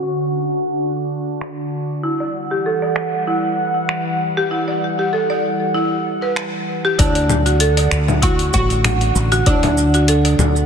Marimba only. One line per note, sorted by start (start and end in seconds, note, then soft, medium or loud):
2.04 2.20 E4 medium
2.20 2.34 D5 medium
2.51 2.64 G4 medium
2.66 2.81 A4 medium
2.82 2.96 D5 medium
3.27 3.43 E4 medium
4.37 4.50 G4 loud
4.51 4.67 E4 medium
4.68 4.81 D5 medium
4.99 5.12 G4 medium
5.13 5.28 A4 medium
5.30 5.43 D5 medium
5.74 5.91 E4 medium
6.22 6.36 B4 medium
6.85 6.97 G4 loud
6.99 7.15 E4 medium
7.16 7.29 D5 medium
7.46 7.59 F#4 medium
7.60 7.76 A4 medium
7.77 7.91 D5 medium
8.22 8.38 E4 medium
9.32 9.45 F#4 loud
9.47 9.62 E4 medium
9.64 9.77 D5 medium
9.95 10.07 F#4 medium
10.08 10.23 A4 medium
10.25 10.38 D5 medium